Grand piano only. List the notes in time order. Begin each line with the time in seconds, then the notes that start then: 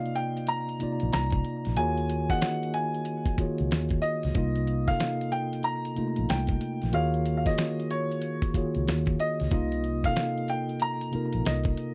Already playing: F5
0.16 G5
0.48 A#5
1.13 A#5
1.77 G#5
2.30 F#5
2.74 G#5
4.02 D#5
4.88 F5
5.32 G5
5.64 A#5
6.30 G5
6.94 F5
7.37 F5
7.46 D#5
7.91 C#5
9.20 D#5
10.05 F5
10.50 G5
10.82 A#5
11.46 D#5